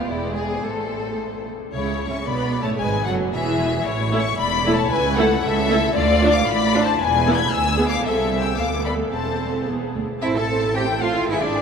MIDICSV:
0, 0, Header, 1, 6, 480
1, 0, Start_track
1, 0, Key_signature, 3, "major"
1, 0, Tempo, 544959
1, 561, Time_signature, 2, 2, 24, 8
1, 1998, Tempo, 525855
1, 5370, Key_signature, 0, "minor"
1, 7278, Tempo, 538600
1, 10454, End_track
2, 0, Start_track
2, 0, Title_t, "Violin section"
2, 0, Program_c, 0, 48
2, 67, Note_on_c, 0, 74, 57
2, 546, Note_off_c, 0, 74, 0
2, 558, Note_on_c, 0, 72, 52
2, 1345, Note_off_c, 0, 72, 0
2, 1518, Note_on_c, 0, 73, 90
2, 1814, Note_off_c, 0, 73, 0
2, 1842, Note_on_c, 0, 85, 79
2, 1993, Note_on_c, 0, 83, 92
2, 1998, Note_off_c, 0, 85, 0
2, 2318, Note_off_c, 0, 83, 0
2, 2322, Note_on_c, 0, 81, 79
2, 2387, Note_off_c, 0, 81, 0
2, 2467, Note_on_c, 0, 80, 102
2, 2712, Note_off_c, 0, 80, 0
2, 2715, Note_on_c, 0, 78, 89
2, 2788, Note_off_c, 0, 78, 0
2, 2955, Note_on_c, 0, 76, 105
2, 3433, Note_off_c, 0, 76, 0
2, 3437, Note_on_c, 0, 73, 107
2, 3766, Note_off_c, 0, 73, 0
2, 3776, Note_on_c, 0, 85, 109
2, 3922, Note_on_c, 0, 83, 114
2, 3935, Note_off_c, 0, 85, 0
2, 4242, Note_off_c, 0, 83, 0
2, 4261, Note_on_c, 0, 81, 104
2, 4407, Note_on_c, 0, 80, 117
2, 4418, Note_off_c, 0, 81, 0
2, 4646, Note_off_c, 0, 80, 0
2, 4656, Note_on_c, 0, 78, 104
2, 4894, Note_off_c, 0, 78, 0
2, 4896, Note_on_c, 0, 76, 118
2, 5365, Note_on_c, 0, 74, 125
2, 5370, Note_off_c, 0, 76, 0
2, 5680, Note_off_c, 0, 74, 0
2, 5682, Note_on_c, 0, 86, 107
2, 5835, Note_on_c, 0, 83, 124
2, 5844, Note_off_c, 0, 86, 0
2, 6157, Note_off_c, 0, 83, 0
2, 6163, Note_on_c, 0, 81, 99
2, 6320, Note_on_c, 0, 80, 121
2, 6322, Note_off_c, 0, 81, 0
2, 6638, Note_on_c, 0, 92, 109
2, 6639, Note_off_c, 0, 80, 0
2, 6787, Note_on_c, 0, 88, 120
2, 6797, Note_off_c, 0, 92, 0
2, 7110, Note_off_c, 0, 88, 0
2, 7117, Note_on_c, 0, 86, 100
2, 7270, Note_on_c, 0, 76, 97
2, 7273, Note_off_c, 0, 86, 0
2, 7583, Note_off_c, 0, 76, 0
2, 7592, Note_on_c, 0, 88, 86
2, 7751, Note_on_c, 0, 86, 94
2, 7752, Note_off_c, 0, 88, 0
2, 7994, Note_off_c, 0, 86, 0
2, 7995, Note_on_c, 0, 83, 77
2, 8066, Note_off_c, 0, 83, 0
2, 8226, Note_on_c, 0, 81, 85
2, 8711, Note_off_c, 0, 81, 0
2, 9200, Note_on_c, 0, 81, 72
2, 9318, Note_off_c, 0, 81, 0
2, 9325, Note_on_c, 0, 76, 65
2, 9443, Note_on_c, 0, 81, 64
2, 9449, Note_off_c, 0, 76, 0
2, 9565, Note_on_c, 0, 76, 68
2, 9567, Note_off_c, 0, 81, 0
2, 9686, Note_on_c, 0, 81, 63
2, 9687, Note_off_c, 0, 76, 0
2, 9795, Note_on_c, 0, 76, 66
2, 9799, Note_off_c, 0, 81, 0
2, 9913, Note_on_c, 0, 81, 65
2, 9921, Note_off_c, 0, 76, 0
2, 10027, Note_on_c, 0, 76, 62
2, 10039, Note_off_c, 0, 81, 0
2, 10151, Note_on_c, 0, 80, 83
2, 10154, Note_off_c, 0, 76, 0
2, 10266, Note_off_c, 0, 80, 0
2, 10268, Note_on_c, 0, 76, 72
2, 10386, Note_on_c, 0, 80, 62
2, 10391, Note_off_c, 0, 76, 0
2, 10454, Note_off_c, 0, 80, 0
2, 10454, End_track
3, 0, Start_track
3, 0, Title_t, "Violin section"
3, 0, Program_c, 1, 48
3, 80, Note_on_c, 1, 64, 71
3, 316, Note_on_c, 1, 68, 76
3, 319, Note_off_c, 1, 64, 0
3, 556, Note_off_c, 1, 68, 0
3, 565, Note_on_c, 1, 69, 68
3, 1289, Note_off_c, 1, 69, 0
3, 1525, Note_on_c, 1, 64, 72
3, 1818, Note_off_c, 1, 64, 0
3, 1839, Note_on_c, 1, 76, 73
3, 1997, Note_off_c, 1, 76, 0
3, 1999, Note_on_c, 1, 74, 77
3, 2315, Note_off_c, 1, 74, 0
3, 2324, Note_on_c, 1, 73, 75
3, 2484, Note_off_c, 1, 73, 0
3, 2499, Note_on_c, 1, 71, 80
3, 2733, Note_off_c, 1, 71, 0
3, 2734, Note_on_c, 1, 69, 78
3, 2807, Note_off_c, 1, 69, 0
3, 2982, Note_on_c, 1, 68, 84
3, 3447, Note_off_c, 1, 68, 0
3, 3462, Note_on_c, 1, 64, 77
3, 3778, Note_off_c, 1, 64, 0
3, 3779, Note_on_c, 1, 76, 83
3, 3936, Note_off_c, 1, 76, 0
3, 3947, Note_on_c, 1, 74, 88
3, 4255, Note_off_c, 1, 74, 0
3, 4263, Note_on_c, 1, 73, 99
3, 4419, Note_off_c, 1, 73, 0
3, 4420, Note_on_c, 1, 71, 106
3, 4652, Note_on_c, 1, 69, 92
3, 4653, Note_off_c, 1, 71, 0
3, 4888, Note_off_c, 1, 69, 0
3, 4899, Note_on_c, 1, 69, 103
3, 5362, Note_off_c, 1, 69, 0
3, 5373, Note_on_c, 1, 65, 104
3, 5684, Note_off_c, 1, 65, 0
3, 5694, Note_on_c, 1, 77, 94
3, 5850, Note_off_c, 1, 77, 0
3, 5861, Note_on_c, 1, 74, 114
3, 6170, Note_off_c, 1, 74, 0
3, 6171, Note_on_c, 1, 72, 88
3, 6325, Note_off_c, 1, 72, 0
3, 6328, Note_on_c, 1, 71, 89
3, 6636, Note_off_c, 1, 71, 0
3, 6640, Note_on_c, 1, 83, 101
3, 6798, Note_off_c, 1, 83, 0
3, 6799, Note_on_c, 1, 80, 95
3, 7109, Note_off_c, 1, 80, 0
3, 7121, Note_on_c, 1, 77, 88
3, 7275, Note_off_c, 1, 77, 0
3, 7280, Note_on_c, 1, 69, 77
3, 7588, Note_off_c, 1, 69, 0
3, 7589, Note_on_c, 1, 79, 81
3, 7746, Note_on_c, 1, 77, 85
3, 7748, Note_off_c, 1, 79, 0
3, 7817, Note_off_c, 1, 77, 0
3, 7988, Note_on_c, 1, 74, 74
3, 8059, Note_off_c, 1, 74, 0
3, 8239, Note_on_c, 1, 72, 68
3, 8717, Note_off_c, 1, 72, 0
3, 9212, Note_on_c, 1, 76, 97
3, 9260, Note_off_c, 1, 76, 0
3, 9333, Note_on_c, 1, 81, 86
3, 9684, Note_off_c, 1, 81, 0
3, 9695, Note_on_c, 1, 79, 93
3, 9929, Note_on_c, 1, 77, 86
3, 9930, Note_off_c, 1, 79, 0
3, 10160, Note_on_c, 1, 76, 101
3, 10164, Note_off_c, 1, 77, 0
3, 10277, Note_off_c, 1, 76, 0
3, 10278, Note_on_c, 1, 74, 97
3, 10454, Note_off_c, 1, 74, 0
3, 10454, End_track
4, 0, Start_track
4, 0, Title_t, "Viola section"
4, 0, Program_c, 2, 48
4, 82, Note_on_c, 2, 56, 70
4, 554, Note_off_c, 2, 56, 0
4, 563, Note_on_c, 2, 57, 53
4, 1274, Note_off_c, 2, 57, 0
4, 1532, Note_on_c, 2, 49, 73
4, 1822, Note_off_c, 2, 49, 0
4, 1842, Note_on_c, 2, 61, 79
4, 1904, Note_off_c, 2, 61, 0
4, 1998, Note_on_c, 2, 59, 87
4, 2315, Note_off_c, 2, 59, 0
4, 2326, Note_on_c, 2, 57, 86
4, 2481, Note_off_c, 2, 57, 0
4, 2488, Note_on_c, 2, 56, 84
4, 2723, Note_off_c, 2, 56, 0
4, 2728, Note_on_c, 2, 54, 84
4, 2964, Note_off_c, 2, 54, 0
4, 2972, Note_on_c, 2, 52, 94
4, 3442, Note_off_c, 2, 52, 0
4, 3692, Note_on_c, 2, 64, 88
4, 3693, Note_on_c, 2, 57, 80
4, 3804, Note_off_c, 2, 57, 0
4, 3804, Note_off_c, 2, 64, 0
4, 4182, Note_on_c, 2, 57, 85
4, 4182, Note_on_c, 2, 64, 89
4, 4290, Note_off_c, 2, 57, 0
4, 4290, Note_off_c, 2, 64, 0
4, 4657, Note_on_c, 2, 64, 94
4, 4658, Note_on_c, 2, 57, 98
4, 4767, Note_off_c, 2, 64, 0
4, 4768, Note_off_c, 2, 57, 0
4, 5132, Note_on_c, 2, 57, 89
4, 5133, Note_on_c, 2, 64, 84
4, 5242, Note_off_c, 2, 57, 0
4, 5242, Note_off_c, 2, 64, 0
4, 5612, Note_on_c, 2, 62, 92
4, 5612, Note_on_c, 2, 65, 85
4, 5722, Note_off_c, 2, 62, 0
4, 5722, Note_off_c, 2, 65, 0
4, 6085, Note_on_c, 2, 65, 83
4, 6086, Note_on_c, 2, 62, 92
4, 6195, Note_off_c, 2, 62, 0
4, 6195, Note_off_c, 2, 65, 0
4, 6561, Note_on_c, 2, 59, 89
4, 6561, Note_on_c, 2, 64, 84
4, 6671, Note_off_c, 2, 59, 0
4, 6671, Note_off_c, 2, 64, 0
4, 7031, Note_on_c, 2, 68, 81
4, 7033, Note_on_c, 2, 59, 76
4, 7144, Note_off_c, 2, 68, 0
4, 7145, Note_off_c, 2, 59, 0
4, 7266, Note_on_c, 2, 60, 75
4, 7270, Note_on_c, 2, 69, 77
4, 7714, Note_off_c, 2, 60, 0
4, 7716, Note_off_c, 2, 69, 0
4, 7752, Note_on_c, 2, 59, 75
4, 7752, Note_on_c, 2, 69, 74
4, 8224, Note_off_c, 2, 69, 0
4, 8235, Note_on_c, 2, 69, 62
4, 8238, Note_on_c, 2, 60, 63
4, 8239, Note_off_c, 2, 59, 0
4, 8715, Note_off_c, 2, 69, 0
4, 8721, Note_on_c, 2, 59, 63
4, 8725, Note_on_c, 2, 68, 60
4, 8727, Note_off_c, 2, 60, 0
4, 9029, Note_off_c, 2, 59, 0
4, 9031, Note_off_c, 2, 68, 0
4, 9207, Note_on_c, 2, 72, 73
4, 9209, Note_on_c, 2, 60, 73
4, 9322, Note_off_c, 2, 72, 0
4, 9323, Note_off_c, 2, 60, 0
4, 9327, Note_on_c, 2, 64, 65
4, 9332, Note_on_c, 2, 69, 66
4, 9450, Note_off_c, 2, 64, 0
4, 9452, Note_off_c, 2, 69, 0
4, 9452, Note_on_c, 2, 72, 70
4, 9453, Note_on_c, 2, 60, 65
4, 9571, Note_on_c, 2, 69, 72
4, 9572, Note_off_c, 2, 60, 0
4, 9572, Note_off_c, 2, 72, 0
4, 9573, Note_on_c, 2, 64, 68
4, 9686, Note_on_c, 2, 72, 66
4, 9687, Note_on_c, 2, 60, 68
4, 9690, Note_off_c, 2, 69, 0
4, 9692, Note_off_c, 2, 64, 0
4, 9799, Note_off_c, 2, 60, 0
4, 9799, Note_off_c, 2, 72, 0
4, 9803, Note_on_c, 2, 64, 60
4, 9806, Note_on_c, 2, 69, 59
4, 9920, Note_on_c, 2, 60, 62
4, 9920, Note_on_c, 2, 72, 68
4, 9925, Note_off_c, 2, 64, 0
4, 9926, Note_off_c, 2, 69, 0
4, 10036, Note_on_c, 2, 69, 65
4, 10037, Note_on_c, 2, 64, 67
4, 10042, Note_off_c, 2, 60, 0
4, 10042, Note_off_c, 2, 72, 0
4, 10159, Note_off_c, 2, 64, 0
4, 10159, Note_off_c, 2, 69, 0
4, 10160, Note_on_c, 2, 68, 71
4, 10161, Note_on_c, 2, 71, 68
4, 10262, Note_off_c, 2, 68, 0
4, 10271, Note_off_c, 2, 71, 0
4, 10272, Note_on_c, 2, 68, 63
4, 10276, Note_on_c, 2, 64, 63
4, 10384, Note_off_c, 2, 68, 0
4, 10394, Note_on_c, 2, 71, 70
4, 10395, Note_off_c, 2, 64, 0
4, 10395, Note_on_c, 2, 68, 67
4, 10454, Note_off_c, 2, 68, 0
4, 10454, Note_off_c, 2, 71, 0
4, 10454, End_track
5, 0, Start_track
5, 0, Title_t, "Cello section"
5, 0, Program_c, 3, 48
5, 83, Note_on_c, 3, 40, 57
5, 554, Note_off_c, 3, 40, 0
5, 567, Note_on_c, 3, 45, 50
5, 1350, Note_off_c, 3, 45, 0
5, 1536, Note_on_c, 3, 37, 71
5, 1824, Note_off_c, 3, 37, 0
5, 1843, Note_on_c, 3, 49, 76
5, 1998, Note_off_c, 3, 49, 0
5, 2006, Note_on_c, 3, 47, 85
5, 2325, Note_off_c, 3, 47, 0
5, 2328, Note_on_c, 3, 45, 79
5, 2391, Note_off_c, 3, 45, 0
5, 2492, Note_on_c, 3, 44, 79
5, 2725, Note_off_c, 3, 44, 0
5, 2729, Note_on_c, 3, 42, 83
5, 2969, Note_off_c, 3, 42, 0
5, 2971, Note_on_c, 3, 40, 86
5, 3451, Note_off_c, 3, 40, 0
5, 3451, Note_on_c, 3, 45, 81
5, 3853, Note_off_c, 3, 45, 0
5, 3936, Note_on_c, 3, 40, 82
5, 4336, Note_off_c, 3, 40, 0
5, 4413, Note_on_c, 3, 37, 98
5, 4813, Note_off_c, 3, 37, 0
5, 4894, Note_on_c, 3, 37, 105
5, 5290, Note_off_c, 3, 37, 0
5, 5370, Note_on_c, 3, 38, 95
5, 5768, Note_off_c, 3, 38, 0
5, 5850, Note_on_c, 3, 45, 86
5, 6243, Note_off_c, 3, 45, 0
5, 6325, Note_on_c, 3, 40, 97
5, 6720, Note_off_c, 3, 40, 0
5, 6800, Note_on_c, 3, 38, 87
5, 7196, Note_off_c, 3, 38, 0
5, 7276, Note_on_c, 3, 36, 82
5, 7719, Note_off_c, 3, 36, 0
5, 7755, Note_on_c, 3, 38, 73
5, 8240, Note_off_c, 3, 38, 0
5, 8241, Note_on_c, 3, 40, 60
5, 8670, Note_off_c, 3, 40, 0
5, 8730, Note_on_c, 3, 40, 69
5, 8801, Note_off_c, 3, 40, 0
5, 8971, Note_on_c, 3, 38, 66
5, 9043, Note_off_c, 3, 38, 0
5, 9215, Note_on_c, 3, 64, 102
5, 9326, Note_off_c, 3, 64, 0
5, 9336, Note_on_c, 3, 69, 102
5, 9692, Note_off_c, 3, 69, 0
5, 9694, Note_on_c, 3, 67, 106
5, 9766, Note_off_c, 3, 67, 0
5, 9931, Note_on_c, 3, 65, 103
5, 10161, Note_off_c, 3, 65, 0
5, 10166, Note_on_c, 3, 64, 97
5, 10213, Note_off_c, 3, 64, 0
5, 10282, Note_on_c, 3, 62, 92
5, 10454, Note_off_c, 3, 62, 0
5, 10454, End_track
6, 0, Start_track
6, 0, Title_t, "Double bass section"
6, 0, Program_c, 4, 48
6, 75, Note_on_c, 4, 28, 61
6, 550, Note_off_c, 4, 28, 0
6, 560, Note_on_c, 4, 33, 53
6, 1346, Note_off_c, 4, 33, 0
6, 1527, Note_on_c, 4, 37, 80
6, 1819, Note_off_c, 4, 37, 0
6, 1999, Note_on_c, 4, 35, 89
6, 2321, Note_off_c, 4, 35, 0
6, 2485, Note_on_c, 4, 32, 90
6, 2721, Note_off_c, 4, 32, 0
6, 2731, Note_on_c, 4, 30, 73
6, 2970, Note_off_c, 4, 30, 0
6, 2971, Note_on_c, 4, 28, 86
6, 3449, Note_on_c, 4, 33, 91
6, 3451, Note_off_c, 4, 28, 0
6, 3852, Note_off_c, 4, 33, 0
6, 3932, Note_on_c, 4, 28, 99
6, 4334, Note_off_c, 4, 28, 0
6, 4415, Note_on_c, 4, 37, 106
6, 4814, Note_off_c, 4, 37, 0
6, 4892, Note_on_c, 4, 37, 108
6, 5289, Note_off_c, 4, 37, 0
6, 5366, Note_on_c, 4, 38, 105
6, 5766, Note_off_c, 4, 38, 0
6, 5849, Note_on_c, 4, 33, 96
6, 6243, Note_off_c, 4, 33, 0
6, 6319, Note_on_c, 4, 28, 97
6, 6717, Note_off_c, 4, 28, 0
6, 6795, Note_on_c, 4, 38, 99
6, 7193, Note_off_c, 4, 38, 0
6, 7272, Note_on_c, 4, 36, 80
6, 7717, Note_off_c, 4, 36, 0
6, 7745, Note_on_c, 4, 38, 78
6, 8233, Note_on_c, 4, 28, 65
6, 8235, Note_off_c, 4, 38, 0
6, 9013, Note_off_c, 4, 28, 0
6, 9211, Note_on_c, 4, 33, 86
6, 10127, Note_off_c, 4, 33, 0
6, 10158, Note_on_c, 4, 32, 86
6, 10454, Note_off_c, 4, 32, 0
6, 10454, End_track
0, 0, End_of_file